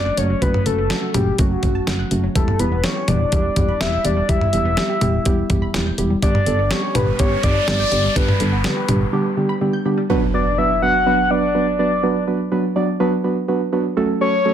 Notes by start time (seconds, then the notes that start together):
Already playing: F#1 D5
0.06 F#6
0.17 F#1 C#3 F#3 A3 C#4 F#4 C#5, closed hi-hat
0.30 F#3
0.42 F#1 C#3 F#3 A3 C#4 F#4 B4, kick, closed hi-hat
0.54 mid tom
0.66 F#1 C#3 F#3 A3 C#4 F#4 A4, closed hi-hat
0.78 A3
0.90 C#3 F#3 A3 C#4 F#4, snare, closed hi-hat
1.02 F#4
1.14 F#1 C#3 F#3 A3 C#4 F#4 G4, closed hi-hat, mid tom
1.38 F#1 C#3 F#3 A3 C#4 F#4, kick, closed hi-hat
1.63 F#1 C#3 F#3 A3 C#4 F#4, kick, closed hi-hat, mid tom
1.75 A5
1.87 F#1 C#3 F#3 A3 C#4 F#4, snare, closed hi-hat
1.99 F#6
2.11 F#1 C#3 F#3 A3 C#4 F#4, closed hi-hat
2.23 F#3
2.35 E1 E3 G3 B3 E4 G4 A4, kick, closed hi-hat
2.48 mid tom
2.59 E1 E3 G3 B3 E4 G4 B4, closed hi-hat
2.72 B3
2.84 E3 G3 B3 E4 G4 C#5, snare, closed hi-hat
2.96 G4
3.08 E1 E3 G3 B3 E4 G4 D5, closed hi-hat, mid tom
3.32 E1 E3 G3 B3 E4 G4, kick, closed hi-hat
3.56 E1 E3 G3 B3 E4 G4, kick, closed hi-hat, mid tom
3.69 B5
3.81 E1 E3 G3 B3 E4 G4 E5, snare, closed hi-hat
3.93 G6
4.05 E1 E3 G3 B3 E4 G4 D5, closed hi-hat
4.17 G3
4.29 E1 E3 G3 B3 E4 G4 E5, kick, closed hi-hat
4.41 mid tom
4.53 E1 E3 G3 B3 E4 G4, closed hi-hat
4.65 B3
4.77 E3 G3 B3 E4 G4, snare, closed hi-hat
4.89 G4
5.01 E1 E3 G3 B3 E4 G4, closed hi-hat, mid tom
5.25 E1 E3 G3 B3 E4 G4, kick, closed hi-hat
5.50 E1 E3 G3 B3 E4 G4, kick, closed hi-hat, mid tom
5.62 B5
5.74 E1 E3 G3 B3 E4 G4, snare, closed hi-hat
5.86 G6
5.98 E1 E3 G3 B3 E4 G4, closed hi-hat
6.10 G3
6.22 G1 D3 G3 B3 D4 G4 D5, kick, closed hi-hat, noise sweep
6.35 mid tom
6.46 G1 D3 G3 B3 D4 A4, closed hi-hat
6.59 B3
6.71 D3 G3 B3 D4 G4 C#5, snare, closed hi-hat
6.83 G4
6.95 G1 D3 G3 B3 D4 G4 B4, closed hi-hat, mid tom
7.19 G1 D3 G3 B3 D4 G4 C#5, kick, closed hi-hat
7.43 G1 D3 G3 B3 D4 G4 D5, kick, closed hi-hat, mid tom
7.56 B5
7.68 G1 D3 G3 B3 D4 G4, snare, closed hi-hat
7.80 G6
7.92 G1 D3 G3 B3 D4 G4, closed hi-hat
8.04 G3
8.16 G1 D3 G3 B3 D4 G4 B4, kick, closed hi-hat
8.29 mid tom
8.40 G1 D3 G3 B3 D4 A4, closed hi-hat
8.52 B3
8.64 D3 G3 B3 D4 G4, snare, closed hi-hat
8.77 G4
8.89 G1 D3 G3 B3 D4 G4, closed hi-hat, mid tom
9.13 D3 G3 B3 D4 G4
9.37 D3 G3 B3 D4 G4
9.49 B5
9.61 D3 G3 B3 D4 G4
9.73 G6
9.85 D3 G3 B3 D4 G4
9.98 G3
10.10 F#3 B3 D4 F#4 B4, impact
10.34 F#3 B3 D4 F#4 B4 D5
10.58 F#3 B3 D4 F#4 B4 E5
10.82 F#3 B3 D4 F#4 B4 F#5
11.06 F#3 B3 D4 F#4 B4
11.31 F#3 B3 D4 F#4 B4 D5
11.55 F#3 B3 D4 F#4 B4
11.79 F#3 B3 D4 F#4 B4 D5
12.03 F#3 B3 D4 F#4 B4
12.27 F#3 B3 D4 F#4 B4
12.52 F#3 B3 D4 F#4 B4
12.76 F#3 B3 D4 F#4 D5
13.00 F#3 B3 D4 F#4 B4
13.24 F#3 B3 D4 F#4 B4
13.48 F#3 B3 D4 F#4 B4
13.73 F#3 B3 D4 F#4 B4
13.97 F#3 A3 C#4 F#4 A4
14.21 F#3 A3 C#4 F#4 A4 C#5
14.45 F#3 A3 C#4 F#4 A4